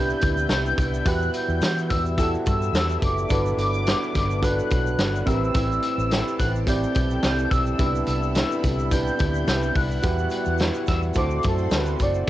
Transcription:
Already playing: C2 C3 G3 B3 D4 E4 G4 B4 E5 A5 G6
0.10 shaker
0.21 D2, kick, closed hi-hat, shaker
0.37 shaker
0.49 C2, snare, closed hi-hat, shaker
0.66 shaker
0.77 C2 G3 B3 E4, kick, closed hi-hat, shaker
0.94 shaker
1.04 E2 E3 G3 B3 E4 F#4 G4 B4 F#6, kick, closed hi-hat, shaker
1.22 shaker
1.34 G6, closed hi-hat, shaker
1.48 E2, shaker
1.61 E3, snare, closed hi-hat, shaker
1.78 shaker
1.89 E2 E6, kick, closed hi-hat, shaker
2.06 shaker
2.17 E3 G3 B3 E4 F#4 G4 A4 E6, kick, closed hi-hat, shaker
2.35 shaker
2.46 G2 E6, kick, closed hi-hat, shaker
2.62 shaker
2.73 E2, snare, closed hi-hat, shaker
2.90 shaker
3.01 F#1 D6, kick, closed hi-hat, shaker
3.18 shaker
3.29 G1 G2 D3 F#3 B3 D4 F#4 A4 B4, kick, closed hi-hat, shaker
3.46 shaker
3.57 G1 D6, closed hi-hat, shaker
3.74 shaker
3.86 D3 F#3 B3 D4, snare, closed hi-hat, shaker
4.03 shaker
4.15 G1, kick, snare, closed hi-hat, shaker
4.31 shaker
4.42 G2 D3 F#3 B3 D4 F#4 A4 B4 F#6, kick, closed hi-hat, shaker
4.59 shaker
4.70 B1, kick, closed hi-hat, shaker
4.87 shaker
4.98 G1, snare, closed hi-hat, shaker
5.15 shaker
5.26 A1 G3 C4 E4 G4 A4 A#4 A5 E6, kick, closed hi-hat, shaker
5.34 B4
5.44 shaker
5.54 A1 A2 E3 G3 C4 E4, kick, closed hi-hat, shaker
5.72 shaker
5.82 E6, closed hi-hat, shaker
5.98 A1, shaker
6.09 E3 G3 C4 E4, snare, closed hi-hat, shaker
6.28 shaker
6.39 A1 F#6, kick, closed hi-hat, shaker
6.55 shaker
6.67 A2 E3 G3 C4 E4 G4 D5 G6, kick, closed hi-hat, shaker
6.83 shaker
6.94 B1, kick, closed hi-hat, shaker
7.10 shaker
7.23 C2, snare, closed hi-hat, shaker
7.39 shaker
7.49 B1 G3 C4 E4 E6, kick, closed hi-hat, shaker
7.66 shaker
7.78 C2 C3 G3 B3 D4 E4 G4 B4 B5, kick, closed hi-hat, shaker
7.95 shaker
8.06 C2 E6, closed hi-hat, shaker
8.23 shaker
8.34 C3 G3 B3 E4, snare, closed hi-hat, shaker
8.51 shaker
8.64 C2, kick, closed hi-hat, shaker
8.79 shaker
8.91 C3 G3 B3 D4 E4 G4 B4 G6, kick, closed hi-hat, shaker
9.07 shaker
9.19 D2, kick, closed hi-hat, shaker
9.34 shaker
9.47 C2, snare, closed hi-hat, shaker
9.62 shaker
9.75 C2 G3 B3 E4 F#6, kick, open hi-hat, shaker
9.91 shaker
10.02 E2 E3 G3 B3 E4 F#4 G4 B4 F#5, kick, closed hi-hat, shaker
10.18 shaker
10.30 closed hi-hat, shaker
10.45 E2, shaker
10.58 E3 G3, snare, closed hi-hat, shaker
10.62 B3 F#4
10.74 shaker
10.86 E2 E6, kick, snare, closed hi-hat, shaker
11.02 shaker
11.14 D2 D3 A3 C4 E4 F#4 A4 C5 D5 C6 D6, kick, closed hi-hat, shaker
11.18 F#4
11.30 shaker
11.43 F#2, kick, closed hi-hat, shaker
11.47 A4
11.58 shaker
11.71 D2, snare, closed hi-hat, shaker
11.76 B4
11.86 shaker
11.99 F#1 A3 C4 F#4 D5, kick, closed hi-hat, shaker
12.14 shaker
12.27 D4

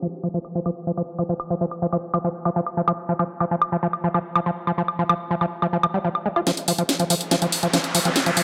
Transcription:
0.02 F3
0.24 F3, high woodblock
0.34 F3
0.45 high woodblock
0.55 F3
0.66 F3, high woodblock
0.87 F3
0.97 F3, high woodblock
1.19 F3, high woodblock
1.29 F3
1.40 high woodblock
1.50 F3
1.61 F3
1.71 high woodblock
1.82 F3
1.93 F3, high woodblock
2.14 F3, high woodblock
2.24 F3
2.45 F3, high woodblock
2.56 F3
2.67 high woodblock
2.77 F3
2.88 F3, high woodblock
3.09 F3
3.19 F3, high woodblock
3.40 F3, high woodblock
3.51 F3
3.62 high woodblock
3.72 F3
3.83 F3
3.93 high woodblock
4.04 F3
4.14 F3, high woodblock
4.36 F3, high woodblock
4.46 F3
4.67 F3, high woodblock
4.78 F3
4.88 high woodblock
4.99 F3
5.09 F3, high woodblock
5.31 F3
5.41 F3, high woodblock
5.62 F3, high woodblock
5.73 F3
5.83 F3, high woodblock
5.94 G3
6.05 F3
6.15 high woodblock
6.26 G#3
6.36 F4, high woodblock
6.47 F3, snare, closed hi-hat, riser
6.57 closed hi-hat
6.68 F3, open hi-hat
6.78 F3, closed hi-hat
6.89 snare, closed hi-hat
7.00 F3, closed hi-hat
7.10 F3, open hi-hat
7.21 closed hi-hat
7.31 F3, snare, closed hi-hat
7.42 F3, closed hi-hat
7.52 open hi-hat
7.63 F3, closed hi-hat
7.74 F3, snare, closed hi-hat
7.84 closed hi-hat
7.95 F3, open hi-hat
8.05 F3 C4, closed hi-hat
8.16 C4, snare, closed hi-hat
8.26 F3, closed hi-hat
8.37 F3, open hi-hat

